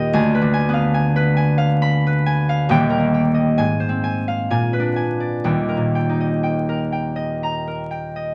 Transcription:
harp
Already playing: D#1 D#2 A#2 A#3 A#4 D#5 G5 A#5
0.13 D2 G#5
0.35 B4
0.42 D3
0.54 G#5
0.69 B3
0.74 F5
0.94 G#5
1.16 B4
1.37 G#5
1.58 F5
1.82 B5
2.07 B4
2.26 G#5
2.49 F5
2.69 D#1 D#2 G5
2.90 A#4
2.99 A#3
3.14 G5
3.34 D#5
3.58 G#2 G#5
3.80 C5
3.89 C4
4.04 G#5
4.28 F5
4.50 A#2 G#5
4.73 B4
4.80 D4
4.96 G#5
5.20 D5
5.44 D#1 D#2 G5
5.69 A#4
5.77 A#2
5.95 G5
6.09 D#4
6.20 D#5
6.43 G5
6.69 A#4
6.92 G5
7.16 D#5
7.43 A#5
7.67 A#4
7.91 G5
8.16 D#5

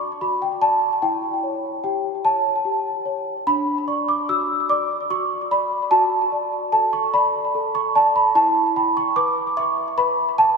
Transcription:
celesta
Already playing: D4 F#4 D5 A5 B5 C#6 D6
0.21 F#4 B5
0.42 G5
0.62 D5 A5
1.02 E4 G5
1.43 C#5
1.84 G4 G5
2.25 C#5 A5
2.65 G4
3.05 C#5
3.47 D4 B5
3.88 D5 C#6
4.08 D6
4.29 F#4 E6
4.69 D5 D6
5.10 F#4 C#6
5.51 D5 B5
5.91 F#4 A5
6.32 D5
6.72 A4 A5
6.93 C#6
7.14 D5 B5
7.55 A4
7.75 C#6
7.95 D5 A5
8.16 B5
8.35 E4 A5
8.76 G5 B5
8.97 C#6
9.16 B4 D6
9.57 E5 C#6
9.98 B4 B5
10.38 G5 A5

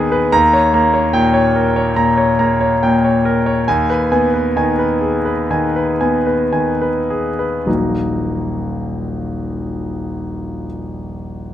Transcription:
grand piano
Already playing: D#3 B3 G#4 B4 G#5
0.12 B4
0.32 D#2 A#5
0.53 C#5
0.74 A#3 A#5
0.94 C#5
1.13 A#2 G5
1.34 C#5
1.56 A#4
1.76 C#5
1.96 A#2 A#5
2.17 C#5
2.39 A#3 A#5
2.61 C#5
2.83 A#2 G5
3.04 C#5
3.25 A#4
3.46 C#5
3.68 D#2 G#5
3.90 B4
4.12 B3 G#5
4.34 B4
4.56 D#3 G#5
4.79 B4
5.01 G#4
5.25 B4
5.51 D#3 G#5
5.76 B4
6.01 B3 G#5
6.27 B4
6.53 D#3 G#5
6.82 B4
7.10 G#4
7.39 B4
7.66 D#1 A#1 F#3 A#3 D#4 F#4

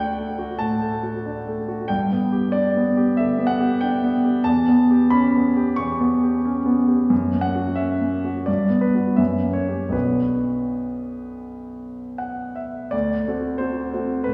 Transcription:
grand piano
Already playing: D2 A3 D4 F#4 F#5 G5
0.18 A3
0.39 F#4
0.59 A2 A5
0.81 A3
1.03 F#4
1.26 D4
1.48 A3
1.68 F#4
1.88 G2 G5
2.12 B3
2.32 G4
2.52 D4 D5
2.77 B3
2.97 G4
3.17 D3 E5
3.39 B3
3.47 F#5
3.60 G4
3.81 D4 G5
4.03 B3
4.24 G4
4.44 E2 A5
4.68 B3
4.91 G4
5.10 C#4 B5
5.36 B3
5.57 G4
5.76 E2 C#6
6.00 B3
6.23 G4
6.45 C#4
6.66 B3
6.88 G4
7.10 F#2
7.33 A#3
7.41 F#5
7.55 F#4
7.75 C#4 E5
8.00 A#3
8.25 F#4
8.46 G2 D5
8.70 B3
8.81 B4
8.94 B3 F#4
9.16 F#2 E5
9.43 A#3
9.53 C#5
9.68 C#4 G4
9.89 B1 B3 D4 F#4 B4
12.18 F#5
12.56 E5
12.91 D2 D5
13.27 A3 C4 F#4
13.58 A3 C4 F#4 C5
13.93 A3 C4 F#4
14.24 A2 B4

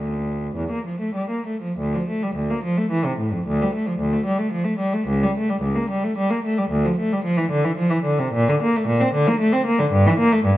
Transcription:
cello
Already playing: D2
0.56 E2
0.71 A#3
0.86 F3
1.00 A3
1.15 G3
1.30 A#3
1.47 A3
1.62 F3
1.78 D2
1.94 F3
2.08 A3
2.23 G3
2.35 D2
2.50 A#3
2.64 F3
2.77 A3
2.91 E3
3.05 C3
3.18 A2
3.32 F2
3.47 D2
3.62 G3
3.74 A3
3.86 F3
4.00 D2
4.13 A3
4.25 G3
4.38 A3
4.52 F3
4.64 A3
4.79 G3
4.93 A3
5.08 C#2
5.23 G3
5.37 A3
5.50 G3
5.62 C#2
5.76 A#3
5.90 G3
6.04 A3
6.17 G3
6.30 A#3
6.45 A3
6.58 G3
6.70 D2
6.85 F3
6.99 A3
7.13 G3
7.24 F3
7.37 E3
7.51 D3
7.65 E3
7.77 F3
7.90 E3
8.04 D3
8.19 C3
8.34 A#2
8.49 D3
8.62 A#3
8.76 A3
8.87 A#2
9.01 C4
9.14 D3
9.28 A#3
9.39 A3
9.53 C4
9.66 A#3
9.79 D3
9.92 G2
10.07 E3
10.19 A#3
10.33 A3
10.45 G2

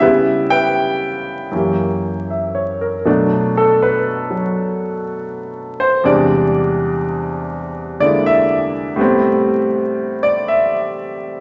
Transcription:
grand piano
0.00 C#3 G3 B3 E4 G4 B4 E5
0.50 B4 E5 G5
1.51 F#2 E3 A#3
1.56 G4
2.30 E5
2.55 C#5
2.81 A#4
3.05 B2 F#3 A3 D4
3.57 A4
3.83 B4
4.31 F#3
5.80 C5
6.04 E2 C3 G3 G#3 D4 D5
8.00 D3 G#3 A#3 E4 D5
8.26 E5
8.96 A2 G3 B3
9.01 C4
10.23 D5
10.48 E5

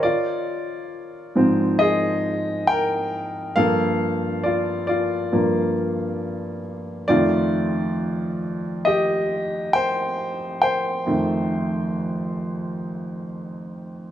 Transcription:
grand piano
Already playing: A#4 C#5
0.03 F4 D5
1.35 G#2 F3 C4
1.79 G#4 D#5
2.67 A#4 G5
3.56 G2 F3 A#3 A4 F5
4.43 F4 D5
4.87 F4 D5
5.33 G2 F3 A#3
7.08 F2 D#3 A3 F4 D5
8.85 G4 D#5
9.73 C5 G5
10.62 C5 G5
11.07 F2 D#3 A3

